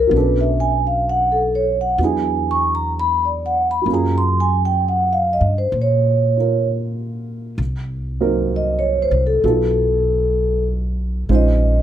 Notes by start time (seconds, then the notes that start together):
Already playing: F3 G#3 C4 D#4 G#4 A#4
0.07 B1 F#3 B3
0.13 C#4 D4 B4
0.17 A4
0.41 E5
0.60 G#5
0.87 F5
1.09 F#5
1.32 A4
1.55 C#5
1.81 F#5
1.98 E2 F#3 B3 D4
2.03 E4 G#4 G#5
2.51 C#6
2.75 A#5
3.00 B5
3.25 D5
3.46 F#5
3.71 B5
3.82 F#3 A#3
3.86 F#2 C#4
3.91 F4 G#4 A#5
4.18 C6
4.40 G#5
4.65 G5
4.88 F#5
5.13 F5
5.33 D#5
5.41 G2
5.58 C5
5.72 A#2
5.82 C#5
6.37 F4 A#4
7.58 C2
8.21 F#3 A#3 C4 D#4 A#4
8.56 D#5
8.79 C#5
9.02 C5
9.11 C2
9.27 A4
9.44 B1 F#3 B3 D#4 F4 A4
11.29 A#1 G#3 C#4 D#4 F4 C5
11.35 D#5